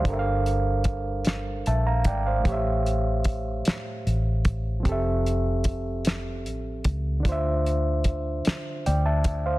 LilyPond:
<<
  \new Staff \with { instrumentName = "Reed electric piano" } { \time 6/8 \key d \minor \tempo 4. = 50 << { <c'' f''>16 r4. r16 <e'' a''>16 <f'' bes''>16 <d'' g''>16 <c'' f''>16~ | <c'' f''>16 r2 r8. | r2. | r2 <d'' g''>16 <e'' a''>8 <c'' f''>16 | } \\ { <g d' a' bes' e'' f''>2. | <a, a g' cis'' e''>2. | <f c' g' a' e''>2. | <d d' f' c'' e''>2. | } >> }
  \new Staff \with { instrumentName = "Fingered electric bass" } { \clef bass \time 6/8 \key d \minor g,,2 bes,,8 gis,,8 | a,,4. r8 a,,4 | f,,2 a,,8 cis,8 | d,4. r8 d,4 | }
  \new DrumStaff \with { instrumentName = "Drums" } \drummode { \time 6/8 <hh bd>8 hh8 <hh bd>8 <hh sn>8 hh8 <hh bd>8 | <hh bd>8 hh8 <hh bd>8 <hh sn>8 hh8 <hh bd>8 | <hh bd>8 hh8 <hh bd>8 <hh sn>8 hh8 <hh bd>8 | <hh bd>8 hh8 <hh bd>8 <hh sn>8 hh8 <hh bd>8 | }
>>